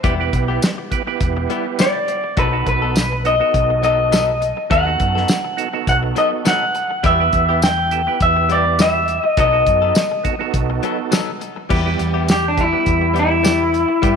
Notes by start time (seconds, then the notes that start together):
0.03 E1 G3 B3 E4 G4 B4, kick, closed hi-hat
0.20 B3 E4 G4 B4
0.33 B1, muted clean electric guitar stroke, kick, closed hi-hat
0.48 B3 E4 G4
0.62 muted clean electric guitar stroke, snare, closed hi-hat, tambourine
0.78 muted clean electric guitar stroke
0.91 B3 E4 G4 B4, kick, closed hi-hat
1.07 B3 E4 G4 B4, muted clean electric guitar stroke
1.20 E1, kick, closed hi-hat
1.37 muted clean electric guitar stroke
1.50 G3 B3 E4 G4, closed hi-hat
1.66 muted clean electric guitar stroke
1.79 G3 B3 E4 G4 D5, snare, closed hi-hat, tambourine
2.08 muted clean electric guitar stroke, closed hi-hat
2.24 muted clean electric guitar stroke
2.36 B1 F#3 B3 D#4 F#4 A4 B4, kick, closed hi-hat
2.52 B3 D#4 F#4 A4
2.66 B1 B4, muted clean electric guitar stroke, kick, closed hi-hat
2.82 B3 D#4 A4
2.96 muted clean electric guitar stroke, snare, closed hi-hat, tambourine
3.12 muted clean electric guitar stroke
3.25 B3 D#4 F#4 A4 D#5, closed hi-hat
3.40 B3 D#4 F#4 A4, muted clean electric guitar stroke
3.54 B1, kick, closed hi-hat
3.70 muted clean electric guitar stroke
3.83 F#3 B3 D#4 A4 D#5, closed hi-hat
3.99 muted clean electric guitar stroke
4.12 F#3 B3 D#4 A4, snare, closed hi-hat, tambourine
4.41 muted clean electric guitar stroke, closed hi-hat
4.57 muted clean electric guitar stroke
4.70 D#2 F#3 B3 D#4 F#4 A4 F#5, kick, closed hi-hat
4.86 B3 D#4 F#4 A4
5.00 F#2, muted clean electric guitar stroke, kick, closed hi-hat
5.15 B3 D#4 A4, snare
5.28 muted clean electric guitar stroke, snare, closed hi-hat, tambourine
5.45 muted clean electric guitar stroke
5.57 B3 D#4 F#4 A4, closed hi-hat
5.73 B3 D#4 F#4 A4, muted clean electric guitar stroke
5.87 B1 F#5, kick, closed hi-hat
6.03 muted clean electric guitar stroke
6.16 F#3 B3 D#4 A4 D#5, closed hi-hat
6.32 muted clean electric guitar stroke
6.45 F#3 B3 D#4 A4 F#5, snare, closed hi-hat, tambourine
6.75 muted clean electric guitar stroke, closed hi-hat
6.91 muted clean electric guitar stroke
7.03 E2 G3 B3 E4 G4 B4 E5, kick, closed hi-hat
7.19 B3 E4 G4 B4
7.33 E2, muted clean electric guitar stroke, kick, closed hi-hat
7.49 B3 E4 G4
7.62 G5, muted clean electric guitar stroke, snare, closed hi-hat, tambourine
7.78 muted clean electric guitar stroke
7.91 B3 E4 G4 A4, closed hi-hat
8.07 B3 E4 G4 B4, muted clean electric guitar stroke
8.20 E2 E5, kick, closed hi-hat
8.36 muted clean electric guitar stroke
8.49 G3 B3 E4 G4 D5, closed hi-hat
8.66 muted clean electric guitar stroke
8.79 G3 B3 E4 G4 E5, snare, closed hi-hat, tambourine
9.08 muted clean electric guitar stroke, closed hi-hat
9.23 D#5, muted clean electric guitar stroke
9.37 B1 F#3 B3 D#4 F#4 A4 D#5, kick, closed hi-hat
9.52 B3 D#4 F#4 A4
9.66 F#2, muted clean electric guitar stroke, kick, closed hi-hat
9.82 B3 D#4 A4
9.95 muted clean electric guitar stroke, snare, closed hi-hat, tambourine
10.12 muted clean electric guitar stroke
10.24 B3 D#4 F#4 A4, kick, closed hi-hat
10.39 B3 D#4 F#4 A4, muted clean electric guitar stroke
10.54 B1, kick, closed hi-hat
10.70 muted clean electric guitar stroke
10.83 F#3 B3 D#4 A4, closed hi-hat
10.99 muted clean electric guitar stroke
11.11 F#3 B3 D#4 A4, snare, closed hi-hat, tambourine
11.41 muted clean electric guitar stroke, closed hi-hat
11.56 muted clean electric guitar stroke
11.69 E2 G3 B3 E4 G4, kick, crash
11.85 G3 B3 E4 G4
11.99 E2, muted clean electric guitar stroke, closed hi-hat
12.14 B3 E4 G4
12.28 G4, muted clean electric guitar stroke, snare, closed hi-hat, tambourine
12.44 muted clean electric guitar stroke
12.48 D4
12.56 G3 B3 E4 G4, kick, closed hi-hat
12.61 E4
12.73 G3 B3 E4 G4, muted clean electric guitar stroke
12.86 E2, kick, closed hi-hat
13.02 muted clean electric guitar stroke
13.14 G3 B3 E4 G4, closed hi-hat
13.19 E4
13.30 muted clean electric guitar stroke
13.43 G3 B3 E4 G4, snare, closed hi-hat, tambourine
13.73 muted clean electric guitar stroke, closed hi-hat
13.88 muted clean electric guitar stroke
14.02 G2 G3 B3 E4 G4, kick, closed hi-hat